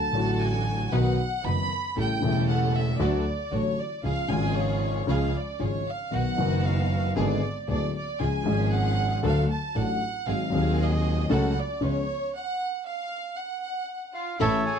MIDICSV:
0, 0, Header, 1, 6, 480
1, 0, Start_track
1, 0, Tempo, 518583
1, 1813, Time_signature, 4, 2, 24, 8
1, 13693, End_track
2, 0, Start_track
2, 0, Title_t, "Violin section"
2, 0, Program_c, 0, 48
2, 0, Note_on_c, 0, 81, 103
2, 382, Note_off_c, 0, 81, 0
2, 389, Note_on_c, 0, 80, 95
2, 862, Note_off_c, 0, 80, 0
2, 868, Note_on_c, 0, 78, 97
2, 1341, Note_off_c, 0, 78, 0
2, 1355, Note_on_c, 0, 83, 117
2, 1824, Note_off_c, 0, 83, 0
2, 1847, Note_on_c, 0, 79, 102
2, 2277, Note_off_c, 0, 79, 0
2, 2311, Note_on_c, 0, 78, 93
2, 2542, Note_off_c, 0, 78, 0
2, 2564, Note_on_c, 0, 76, 89
2, 2789, Note_off_c, 0, 76, 0
2, 2795, Note_on_c, 0, 74, 87
2, 3264, Note_off_c, 0, 74, 0
2, 3279, Note_on_c, 0, 73, 96
2, 3506, Note_off_c, 0, 73, 0
2, 3512, Note_on_c, 0, 74, 84
2, 3742, Note_off_c, 0, 74, 0
2, 3750, Note_on_c, 0, 77, 100
2, 3966, Note_off_c, 0, 77, 0
2, 3989, Note_on_c, 0, 80, 92
2, 4222, Note_off_c, 0, 80, 0
2, 4238, Note_on_c, 0, 73, 90
2, 4708, Note_off_c, 0, 73, 0
2, 4721, Note_on_c, 0, 77, 86
2, 4949, Note_off_c, 0, 77, 0
2, 4963, Note_on_c, 0, 74, 75
2, 5191, Note_off_c, 0, 74, 0
2, 5204, Note_on_c, 0, 73, 87
2, 5432, Note_off_c, 0, 73, 0
2, 5443, Note_on_c, 0, 77, 78
2, 5673, Note_off_c, 0, 77, 0
2, 5682, Note_on_c, 0, 78, 91
2, 6153, Note_off_c, 0, 78, 0
2, 6173, Note_on_c, 0, 77, 84
2, 6639, Note_off_c, 0, 77, 0
2, 6640, Note_on_c, 0, 74, 89
2, 7080, Note_off_c, 0, 74, 0
2, 7129, Note_on_c, 0, 74, 87
2, 7342, Note_off_c, 0, 74, 0
2, 7369, Note_on_c, 0, 74, 84
2, 7582, Note_off_c, 0, 74, 0
2, 7604, Note_on_c, 0, 80, 91
2, 8076, Note_off_c, 0, 80, 0
2, 8091, Note_on_c, 0, 78, 94
2, 8526, Note_off_c, 0, 78, 0
2, 8577, Note_on_c, 0, 77, 95
2, 8802, Note_off_c, 0, 77, 0
2, 8808, Note_on_c, 0, 81, 84
2, 9020, Note_off_c, 0, 81, 0
2, 9051, Note_on_c, 0, 78, 98
2, 9516, Note_off_c, 0, 78, 0
2, 9523, Note_on_c, 0, 77, 93
2, 9991, Note_off_c, 0, 77, 0
2, 10008, Note_on_c, 0, 75, 87
2, 10472, Note_off_c, 0, 75, 0
2, 10490, Note_on_c, 0, 78, 87
2, 10713, Note_off_c, 0, 78, 0
2, 10725, Note_on_c, 0, 74, 81
2, 10949, Note_off_c, 0, 74, 0
2, 10958, Note_on_c, 0, 73, 92
2, 11424, Note_off_c, 0, 73, 0
2, 11436, Note_on_c, 0, 78, 93
2, 11870, Note_off_c, 0, 78, 0
2, 11908, Note_on_c, 0, 77, 94
2, 12346, Note_off_c, 0, 77, 0
2, 12373, Note_on_c, 0, 78, 80
2, 13088, Note_on_c, 0, 65, 70
2, 13092, Note_off_c, 0, 78, 0
2, 13312, Note_off_c, 0, 65, 0
2, 13323, Note_on_c, 0, 64, 84
2, 13548, Note_off_c, 0, 64, 0
2, 13566, Note_on_c, 0, 68, 79
2, 13693, Note_off_c, 0, 68, 0
2, 13693, End_track
3, 0, Start_track
3, 0, Title_t, "Bandoneon"
3, 0, Program_c, 1, 23
3, 13092, Note_on_c, 1, 77, 72
3, 13314, Note_off_c, 1, 77, 0
3, 13338, Note_on_c, 1, 76, 99
3, 13345, Note_on_c, 1, 69, 69
3, 13347, Note_on_c, 1, 73, 68
3, 13557, Note_off_c, 1, 76, 0
3, 13573, Note_on_c, 1, 80, 81
3, 13693, Note_off_c, 1, 69, 0
3, 13693, Note_off_c, 1, 73, 0
3, 13693, Note_off_c, 1, 80, 0
3, 13693, End_track
4, 0, Start_track
4, 0, Title_t, "String section"
4, 0, Program_c, 2, 48
4, 0, Note_on_c, 2, 69, 57
4, 94, Note_off_c, 2, 69, 0
4, 125, Note_on_c, 2, 62, 78
4, 125, Note_on_c, 2, 69, 94
4, 129, Note_on_c, 2, 66, 75
4, 814, Note_off_c, 2, 62, 0
4, 814, Note_off_c, 2, 69, 0
4, 816, Note_off_c, 2, 66, 0
4, 852, Note_on_c, 2, 66, 69
4, 855, Note_on_c, 2, 63, 72
4, 855, Note_on_c, 2, 71, 85
4, 1055, Note_off_c, 2, 66, 0
4, 1056, Note_off_c, 2, 63, 0
4, 1056, Note_off_c, 2, 71, 0
4, 1323, Note_on_c, 2, 63, 51
4, 1323, Note_on_c, 2, 71, 55
4, 1327, Note_on_c, 2, 66, 42
4, 1530, Note_off_c, 2, 63, 0
4, 1530, Note_off_c, 2, 71, 0
4, 1532, Note_off_c, 2, 66, 0
4, 1810, Note_on_c, 2, 61, 57
4, 1812, Note_on_c, 2, 67, 51
4, 1815, Note_on_c, 2, 69, 65
4, 2013, Note_off_c, 2, 61, 0
4, 2014, Note_off_c, 2, 67, 0
4, 2016, Note_off_c, 2, 69, 0
4, 2058, Note_on_c, 2, 61, 80
4, 2060, Note_on_c, 2, 67, 75
4, 2061, Note_on_c, 2, 69, 91
4, 2739, Note_off_c, 2, 61, 0
4, 2740, Note_off_c, 2, 67, 0
4, 2741, Note_off_c, 2, 69, 0
4, 2770, Note_on_c, 2, 62, 82
4, 2771, Note_on_c, 2, 66, 76
4, 2773, Note_on_c, 2, 69, 83
4, 2973, Note_off_c, 2, 62, 0
4, 2974, Note_off_c, 2, 66, 0
4, 2974, Note_off_c, 2, 69, 0
4, 3248, Note_on_c, 2, 66, 42
4, 3249, Note_on_c, 2, 62, 48
4, 3252, Note_on_c, 2, 69, 49
4, 3452, Note_off_c, 2, 62, 0
4, 3452, Note_off_c, 2, 66, 0
4, 3454, Note_off_c, 2, 69, 0
4, 3737, Note_on_c, 2, 61, 51
4, 3739, Note_on_c, 2, 65, 47
4, 3739, Note_on_c, 2, 68, 61
4, 3937, Note_off_c, 2, 61, 0
4, 3938, Note_off_c, 2, 65, 0
4, 3938, Note_off_c, 2, 68, 0
4, 3972, Note_on_c, 2, 61, 82
4, 3973, Note_on_c, 2, 65, 71
4, 3973, Note_on_c, 2, 68, 87
4, 4659, Note_off_c, 2, 61, 0
4, 4660, Note_off_c, 2, 65, 0
4, 4660, Note_off_c, 2, 68, 0
4, 4696, Note_on_c, 2, 61, 82
4, 4697, Note_on_c, 2, 65, 75
4, 4700, Note_on_c, 2, 68, 83
4, 4898, Note_off_c, 2, 61, 0
4, 4899, Note_off_c, 2, 65, 0
4, 4900, Note_off_c, 2, 68, 0
4, 5176, Note_on_c, 2, 61, 43
4, 5179, Note_on_c, 2, 65, 41
4, 5180, Note_on_c, 2, 68, 47
4, 5380, Note_off_c, 2, 61, 0
4, 5382, Note_off_c, 2, 65, 0
4, 5382, Note_off_c, 2, 68, 0
4, 5662, Note_on_c, 2, 59, 56
4, 5662, Note_on_c, 2, 63, 49
4, 5663, Note_on_c, 2, 66, 65
4, 5864, Note_off_c, 2, 59, 0
4, 5864, Note_off_c, 2, 63, 0
4, 5865, Note_off_c, 2, 66, 0
4, 5901, Note_on_c, 2, 59, 84
4, 5904, Note_on_c, 2, 63, 70
4, 5904, Note_on_c, 2, 66, 86
4, 6587, Note_off_c, 2, 59, 0
4, 6589, Note_off_c, 2, 63, 0
4, 6589, Note_off_c, 2, 66, 0
4, 6619, Note_on_c, 2, 59, 75
4, 6622, Note_on_c, 2, 62, 72
4, 6622, Note_on_c, 2, 68, 83
4, 6824, Note_off_c, 2, 59, 0
4, 6825, Note_off_c, 2, 62, 0
4, 6825, Note_off_c, 2, 68, 0
4, 7105, Note_on_c, 2, 59, 50
4, 7105, Note_on_c, 2, 62, 41
4, 7108, Note_on_c, 2, 68, 49
4, 7307, Note_off_c, 2, 59, 0
4, 7308, Note_off_c, 2, 62, 0
4, 7309, Note_off_c, 2, 68, 0
4, 7580, Note_on_c, 2, 61, 57
4, 7582, Note_on_c, 2, 65, 52
4, 7584, Note_on_c, 2, 68, 66
4, 7785, Note_off_c, 2, 61, 0
4, 7786, Note_off_c, 2, 65, 0
4, 7787, Note_off_c, 2, 68, 0
4, 7820, Note_on_c, 2, 61, 80
4, 7823, Note_on_c, 2, 68, 87
4, 7825, Note_on_c, 2, 53, 71
4, 8507, Note_off_c, 2, 61, 0
4, 8509, Note_off_c, 2, 68, 0
4, 8510, Note_off_c, 2, 53, 0
4, 8536, Note_on_c, 2, 62, 79
4, 8537, Note_on_c, 2, 66, 75
4, 8541, Note_on_c, 2, 69, 90
4, 8743, Note_off_c, 2, 62, 0
4, 8743, Note_off_c, 2, 66, 0
4, 8745, Note_off_c, 2, 69, 0
4, 9018, Note_on_c, 2, 62, 49
4, 9023, Note_on_c, 2, 66, 42
4, 9024, Note_on_c, 2, 69, 58
4, 9223, Note_off_c, 2, 62, 0
4, 9225, Note_off_c, 2, 66, 0
4, 9225, Note_off_c, 2, 69, 0
4, 9498, Note_on_c, 2, 60, 61
4, 9500, Note_on_c, 2, 66, 53
4, 9501, Note_on_c, 2, 68, 67
4, 9701, Note_off_c, 2, 60, 0
4, 9702, Note_off_c, 2, 66, 0
4, 9702, Note_off_c, 2, 68, 0
4, 9738, Note_on_c, 2, 60, 86
4, 9740, Note_on_c, 2, 66, 75
4, 9741, Note_on_c, 2, 68, 95
4, 10421, Note_off_c, 2, 60, 0
4, 10422, Note_off_c, 2, 66, 0
4, 10422, Note_off_c, 2, 68, 0
4, 10455, Note_on_c, 2, 61, 81
4, 10455, Note_on_c, 2, 66, 81
4, 10457, Note_on_c, 2, 69, 94
4, 10657, Note_off_c, 2, 61, 0
4, 10657, Note_off_c, 2, 66, 0
4, 10658, Note_off_c, 2, 69, 0
4, 10929, Note_on_c, 2, 61, 55
4, 10934, Note_on_c, 2, 71, 55
4, 10937, Note_on_c, 2, 65, 46
4, 11133, Note_off_c, 2, 61, 0
4, 11135, Note_off_c, 2, 71, 0
4, 11137, Note_off_c, 2, 65, 0
4, 13321, Note_on_c, 2, 61, 81
4, 13325, Note_on_c, 2, 64, 82
4, 13325, Note_on_c, 2, 69, 105
4, 13526, Note_off_c, 2, 61, 0
4, 13528, Note_off_c, 2, 64, 0
4, 13528, Note_off_c, 2, 69, 0
4, 13693, End_track
5, 0, Start_track
5, 0, Title_t, "Grand piano"
5, 0, Program_c, 3, 0
5, 0, Note_on_c, 3, 38, 48
5, 0, Note_on_c, 3, 50, 51
5, 0, Note_on_c, 3, 54, 40
5, 0, Note_on_c, 3, 57, 40
5, 0, Note_on_c, 3, 66, 45
5, 96, Note_off_c, 3, 50, 0
5, 96, Note_off_c, 3, 54, 0
5, 97, Note_off_c, 3, 38, 0
5, 98, Note_off_c, 3, 57, 0
5, 98, Note_off_c, 3, 66, 0
5, 118, Note_on_c, 3, 50, 67
5, 130, Note_on_c, 3, 54, 57
5, 134, Note_on_c, 3, 45, 79
5, 140, Note_on_c, 3, 33, 73
5, 141, Note_on_c, 3, 57, 67
5, 155, Note_on_c, 3, 66, 76
5, 811, Note_off_c, 3, 50, 0
5, 817, Note_off_c, 3, 54, 0
5, 818, Note_off_c, 3, 45, 0
5, 821, Note_off_c, 3, 33, 0
5, 822, Note_off_c, 3, 57, 0
5, 829, Note_off_c, 3, 66, 0
5, 857, Note_on_c, 3, 47, 88
5, 857, Note_on_c, 3, 51, 73
5, 858, Note_on_c, 3, 35, 82
5, 859, Note_on_c, 3, 54, 73
5, 862, Note_on_c, 3, 59, 63
5, 863, Note_on_c, 3, 66, 81
5, 1057, Note_off_c, 3, 47, 0
5, 1057, Note_off_c, 3, 51, 0
5, 1058, Note_off_c, 3, 35, 0
5, 1058, Note_off_c, 3, 54, 0
5, 1060, Note_off_c, 3, 59, 0
5, 1060, Note_off_c, 3, 66, 0
5, 1336, Note_on_c, 3, 51, 44
5, 1338, Note_on_c, 3, 42, 56
5, 1341, Note_on_c, 3, 30, 57
5, 1341, Note_on_c, 3, 54, 44
5, 1341, Note_on_c, 3, 66, 49
5, 1343, Note_on_c, 3, 59, 43
5, 1537, Note_off_c, 3, 51, 0
5, 1538, Note_off_c, 3, 42, 0
5, 1539, Note_off_c, 3, 30, 0
5, 1539, Note_off_c, 3, 54, 0
5, 1539, Note_off_c, 3, 66, 0
5, 1540, Note_off_c, 3, 59, 0
5, 1818, Note_on_c, 3, 45, 58
5, 1818, Note_on_c, 3, 57, 41
5, 1819, Note_on_c, 3, 49, 44
5, 1820, Note_on_c, 3, 33, 54
5, 1820, Note_on_c, 3, 55, 40
5, 1821, Note_on_c, 3, 64, 47
5, 2017, Note_off_c, 3, 45, 0
5, 2017, Note_off_c, 3, 49, 0
5, 2017, Note_off_c, 3, 57, 0
5, 2018, Note_off_c, 3, 33, 0
5, 2018, Note_off_c, 3, 55, 0
5, 2018, Note_off_c, 3, 64, 0
5, 2040, Note_on_c, 3, 49, 69
5, 2055, Note_on_c, 3, 55, 63
5, 2059, Note_on_c, 3, 28, 82
5, 2060, Note_on_c, 3, 40, 87
5, 2066, Note_on_c, 3, 57, 68
5, 2082, Note_on_c, 3, 64, 73
5, 2730, Note_off_c, 3, 49, 0
5, 2738, Note_off_c, 3, 55, 0
5, 2740, Note_off_c, 3, 28, 0
5, 2740, Note_off_c, 3, 40, 0
5, 2743, Note_off_c, 3, 57, 0
5, 2751, Note_off_c, 3, 64, 0
5, 2773, Note_on_c, 3, 38, 93
5, 2773, Note_on_c, 3, 54, 67
5, 2773, Note_on_c, 3, 57, 68
5, 2775, Note_on_c, 3, 50, 90
5, 2779, Note_on_c, 3, 66, 92
5, 2974, Note_off_c, 3, 38, 0
5, 2975, Note_off_c, 3, 54, 0
5, 2975, Note_off_c, 3, 57, 0
5, 2976, Note_off_c, 3, 50, 0
5, 2977, Note_off_c, 3, 66, 0
5, 3253, Note_on_c, 3, 50, 49
5, 3255, Note_on_c, 3, 45, 55
5, 3256, Note_on_c, 3, 33, 55
5, 3256, Note_on_c, 3, 57, 43
5, 3257, Note_on_c, 3, 66, 47
5, 3258, Note_on_c, 3, 54, 44
5, 3454, Note_off_c, 3, 50, 0
5, 3456, Note_off_c, 3, 33, 0
5, 3456, Note_off_c, 3, 45, 0
5, 3456, Note_off_c, 3, 57, 0
5, 3456, Note_off_c, 3, 66, 0
5, 3457, Note_off_c, 3, 54, 0
5, 3734, Note_on_c, 3, 49, 52
5, 3737, Note_on_c, 3, 53, 43
5, 3740, Note_on_c, 3, 37, 52
5, 3741, Note_on_c, 3, 56, 44
5, 3743, Note_on_c, 3, 65, 48
5, 3937, Note_off_c, 3, 53, 0
5, 3938, Note_off_c, 3, 37, 0
5, 3938, Note_off_c, 3, 49, 0
5, 3939, Note_off_c, 3, 56, 0
5, 3940, Note_off_c, 3, 65, 0
5, 3964, Note_on_c, 3, 49, 76
5, 3971, Note_on_c, 3, 53, 60
5, 3980, Note_on_c, 3, 32, 85
5, 3981, Note_on_c, 3, 44, 84
5, 3987, Note_on_c, 3, 56, 64
5, 3997, Note_on_c, 3, 65, 76
5, 4655, Note_off_c, 3, 49, 0
5, 4659, Note_off_c, 3, 53, 0
5, 4663, Note_off_c, 3, 32, 0
5, 4664, Note_off_c, 3, 44, 0
5, 4667, Note_off_c, 3, 56, 0
5, 4671, Note_off_c, 3, 65, 0
5, 4694, Note_on_c, 3, 49, 79
5, 4694, Note_on_c, 3, 53, 73
5, 4695, Note_on_c, 3, 37, 82
5, 4696, Note_on_c, 3, 56, 70
5, 4698, Note_on_c, 3, 65, 82
5, 4897, Note_off_c, 3, 49, 0
5, 4897, Note_off_c, 3, 53, 0
5, 4898, Note_off_c, 3, 37, 0
5, 4898, Note_off_c, 3, 56, 0
5, 4899, Note_off_c, 3, 65, 0
5, 5177, Note_on_c, 3, 56, 42
5, 5178, Note_on_c, 3, 44, 49
5, 5178, Note_on_c, 3, 49, 45
5, 5179, Note_on_c, 3, 65, 48
5, 5180, Note_on_c, 3, 53, 42
5, 5181, Note_on_c, 3, 32, 53
5, 5380, Note_off_c, 3, 56, 0
5, 5381, Note_off_c, 3, 44, 0
5, 5381, Note_off_c, 3, 49, 0
5, 5381, Note_off_c, 3, 65, 0
5, 5382, Note_off_c, 3, 32, 0
5, 5382, Note_off_c, 3, 53, 0
5, 5652, Note_on_c, 3, 51, 47
5, 5658, Note_on_c, 3, 47, 48
5, 5659, Note_on_c, 3, 35, 51
5, 5659, Note_on_c, 3, 54, 41
5, 5661, Note_on_c, 3, 59, 43
5, 5665, Note_on_c, 3, 66, 49
5, 5859, Note_off_c, 3, 51, 0
5, 5862, Note_off_c, 3, 35, 0
5, 5862, Note_off_c, 3, 47, 0
5, 5863, Note_off_c, 3, 54, 0
5, 5863, Note_off_c, 3, 59, 0
5, 5866, Note_off_c, 3, 66, 0
5, 5889, Note_on_c, 3, 51, 67
5, 5899, Note_on_c, 3, 54, 62
5, 5907, Note_on_c, 3, 30, 84
5, 5907, Note_on_c, 3, 42, 72
5, 5913, Note_on_c, 3, 59, 63
5, 5928, Note_on_c, 3, 66, 72
5, 6581, Note_off_c, 3, 51, 0
5, 6586, Note_off_c, 3, 54, 0
5, 6590, Note_off_c, 3, 30, 0
5, 6590, Note_off_c, 3, 42, 0
5, 6593, Note_off_c, 3, 59, 0
5, 6600, Note_off_c, 3, 66, 0
5, 6629, Note_on_c, 3, 50, 78
5, 6633, Note_on_c, 3, 32, 86
5, 6633, Note_on_c, 3, 59, 70
5, 6634, Note_on_c, 3, 56, 70
5, 6634, Note_on_c, 3, 68, 79
5, 6635, Note_on_c, 3, 44, 93
5, 6829, Note_off_c, 3, 50, 0
5, 6831, Note_off_c, 3, 32, 0
5, 6831, Note_off_c, 3, 44, 0
5, 6831, Note_off_c, 3, 56, 0
5, 6831, Note_off_c, 3, 59, 0
5, 6831, Note_off_c, 3, 68, 0
5, 7106, Note_on_c, 3, 50, 50
5, 7109, Note_on_c, 3, 38, 58
5, 7109, Note_on_c, 3, 59, 43
5, 7111, Note_on_c, 3, 26, 53
5, 7111, Note_on_c, 3, 56, 45
5, 7113, Note_on_c, 3, 68, 56
5, 7308, Note_off_c, 3, 50, 0
5, 7309, Note_off_c, 3, 38, 0
5, 7309, Note_off_c, 3, 59, 0
5, 7310, Note_off_c, 3, 26, 0
5, 7310, Note_off_c, 3, 56, 0
5, 7311, Note_off_c, 3, 68, 0
5, 7589, Note_on_c, 3, 49, 52
5, 7589, Note_on_c, 3, 53, 46
5, 7590, Note_on_c, 3, 61, 37
5, 7592, Note_on_c, 3, 37, 49
5, 7592, Note_on_c, 3, 56, 38
5, 7595, Note_on_c, 3, 68, 49
5, 7790, Note_off_c, 3, 49, 0
5, 7790, Note_off_c, 3, 53, 0
5, 7790, Note_off_c, 3, 61, 0
5, 7791, Note_off_c, 3, 37, 0
5, 7791, Note_off_c, 3, 56, 0
5, 7793, Note_off_c, 3, 68, 0
5, 7808, Note_on_c, 3, 53, 76
5, 7821, Note_on_c, 3, 56, 68
5, 7830, Note_on_c, 3, 32, 80
5, 7830, Note_on_c, 3, 44, 90
5, 7833, Note_on_c, 3, 61, 68
5, 7845, Note_on_c, 3, 68, 72
5, 8501, Note_off_c, 3, 53, 0
5, 8508, Note_off_c, 3, 56, 0
5, 8512, Note_off_c, 3, 32, 0
5, 8512, Note_off_c, 3, 44, 0
5, 8514, Note_off_c, 3, 61, 0
5, 8520, Note_off_c, 3, 68, 0
5, 8543, Note_on_c, 3, 54, 75
5, 8543, Note_on_c, 3, 57, 69
5, 8544, Note_on_c, 3, 38, 81
5, 8547, Note_on_c, 3, 69, 77
5, 8550, Note_on_c, 3, 50, 91
5, 8550, Note_on_c, 3, 62, 67
5, 8746, Note_off_c, 3, 54, 0
5, 8746, Note_off_c, 3, 57, 0
5, 8747, Note_off_c, 3, 38, 0
5, 8748, Note_off_c, 3, 69, 0
5, 8750, Note_off_c, 3, 50, 0
5, 8750, Note_off_c, 3, 62, 0
5, 9024, Note_on_c, 3, 54, 48
5, 9027, Note_on_c, 3, 33, 57
5, 9028, Note_on_c, 3, 57, 45
5, 9028, Note_on_c, 3, 62, 43
5, 9032, Note_on_c, 3, 45, 58
5, 9032, Note_on_c, 3, 69, 55
5, 9225, Note_off_c, 3, 54, 0
5, 9227, Note_off_c, 3, 33, 0
5, 9227, Note_off_c, 3, 62, 0
5, 9228, Note_off_c, 3, 57, 0
5, 9229, Note_off_c, 3, 69, 0
5, 9230, Note_off_c, 3, 45, 0
5, 9503, Note_on_c, 3, 60, 47
5, 9505, Note_on_c, 3, 54, 44
5, 9506, Note_on_c, 3, 32, 58
5, 9506, Note_on_c, 3, 44, 55
5, 9506, Note_on_c, 3, 68, 51
5, 9511, Note_on_c, 3, 63, 44
5, 9704, Note_off_c, 3, 60, 0
5, 9705, Note_off_c, 3, 32, 0
5, 9705, Note_off_c, 3, 44, 0
5, 9705, Note_off_c, 3, 54, 0
5, 9705, Note_off_c, 3, 68, 0
5, 9708, Note_off_c, 3, 63, 0
5, 9721, Note_on_c, 3, 54, 78
5, 9732, Note_on_c, 3, 60, 66
5, 9741, Note_on_c, 3, 27, 83
5, 9742, Note_on_c, 3, 39, 84
5, 9744, Note_on_c, 3, 63, 64
5, 9757, Note_on_c, 3, 68, 79
5, 10412, Note_off_c, 3, 54, 0
5, 10418, Note_off_c, 3, 60, 0
5, 10422, Note_off_c, 3, 27, 0
5, 10423, Note_off_c, 3, 39, 0
5, 10424, Note_off_c, 3, 63, 0
5, 10430, Note_off_c, 3, 68, 0
5, 10452, Note_on_c, 3, 54, 80
5, 10456, Note_on_c, 3, 49, 93
5, 10457, Note_on_c, 3, 37, 88
5, 10458, Note_on_c, 3, 57, 79
5, 10459, Note_on_c, 3, 61, 75
5, 10464, Note_on_c, 3, 69, 91
5, 10656, Note_off_c, 3, 54, 0
5, 10658, Note_off_c, 3, 37, 0
5, 10658, Note_off_c, 3, 49, 0
5, 10659, Note_off_c, 3, 57, 0
5, 10659, Note_off_c, 3, 61, 0
5, 10662, Note_off_c, 3, 69, 0
5, 10928, Note_on_c, 3, 53, 49
5, 10930, Note_on_c, 3, 37, 55
5, 10930, Note_on_c, 3, 49, 56
5, 10930, Note_on_c, 3, 59, 44
5, 10932, Note_on_c, 3, 61, 47
5, 10936, Note_on_c, 3, 68, 50
5, 11132, Note_off_c, 3, 53, 0
5, 11133, Note_off_c, 3, 37, 0
5, 11133, Note_off_c, 3, 49, 0
5, 11133, Note_off_c, 3, 59, 0
5, 11134, Note_off_c, 3, 61, 0
5, 11136, Note_off_c, 3, 68, 0
5, 13325, Note_on_c, 3, 45, 77
5, 13327, Note_on_c, 3, 33, 74
5, 13327, Note_on_c, 3, 52, 72
5, 13328, Note_on_c, 3, 61, 64
5, 13330, Note_on_c, 3, 57, 59
5, 13331, Note_on_c, 3, 69, 74
5, 13528, Note_off_c, 3, 45, 0
5, 13529, Note_off_c, 3, 33, 0
5, 13529, Note_off_c, 3, 52, 0
5, 13530, Note_off_c, 3, 61, 0
5, 13531, Note_off_c, 3, 57, 0
5, 13531, Note_off_c, 3, 69, 0
5, 13693, End_track
6, 0, Start_track
6, 0, Title_t, "Double bass"
6, 0, Program_c, 4, 43
6, 0, Note_on_c, 4, 38, 51
6, 95, Note_off_c, 4, 38, 0
6, 127, Note_on_c, 4, 33, 92
6, 815, Note_off_c, 4, 33, 0
6, 853, Note_on_c, 4, 35, 93
6, 1055, Note_off_c, 4, 35, 0
6, 1336, Note_on_c, 4, 30, 66
6, 1537, Note_off_c, 4, 30, 0
6, 1815, Note_on_c, 4, 33, 54
6, 2016, Note_off_c, 4, 33, 0
6, 2051, Note_on_c, 4, 28, 90
6, 2736, Note_off_c, 4, 28, 0
6, 2769, Note_on_c, 4, 38, 90
6, 2972, Note_off_c, 4, 38, 0
6, 3252, Note_on_c, 4, 33, 62
6, 3454, Note_off_c, 4, 33, 0
6, 3734, Note_on_c, 4, 37, 53
6, 3936, Note_off_c, 4, 37, 0
6, 3973, Note_on_c, 4, 32, 97
6, 4660, Note_off_c, 4, 32, 0
6, 4701, Note_on_c, 4, 37, 97
6, 4900, Note_off_c, 4, 37, 0
6, 5185, Note_on_c, 4, 32, 61
6, 5384, Note_off_c, 4, 32, 0
6, 5669, Note_on_c, 4, 35, 54
6, 5868, Note_off_c, 4, 35, 0
6, 5909, Note_on_c, 4, 30, 92
6, 6591, Note_off_c, 4, 30, 0
6, 6627, Note_on_c, 4, 32, 96
6, 6828, Note_off_c, 4, 32, 0
6, 7112, Note_on_c, 4, 38, 61
6, 7311, Note_off_c, 4, 38, 0
6, 7593, Note_on_c, 4, 37, 54
6, 7792, Note_off_c, 4, 37, 0
6, 7833, Note_on_c, 4, 32, 97
6, 8514, Note_off_c, 4, 32, 0
6, 8552, Note_on_c, 4, 38, 99
6, 8751, Note_off_c, 4, 38, 0
6, 9029, Note_on_c, 4, 33, 69
6, 9228, Note_off_c, 4, 33, 0
6, 9506, Note_on_c, 4, 32, 55
6, 9705, Note_off_c, 4, 32, 0
6, 9743, Note_on_c, 4, 39, 94
6, 10423, Note_off_c, 4, 39, 0
6, 10458, Note_on_c, 4, 37, 108
6, 10659, Note_off_c, 4, 37, 0
6, 10932, Note_on_c, 4, 37, 69
6, 11134, Note_off_c, 4, 37, 0
6, 13329, Note_on_c, 4, 33, 81
6, 13530, Note_off_c, 4, 33, 0
6, 13693, End_track
0, 0, End_of_file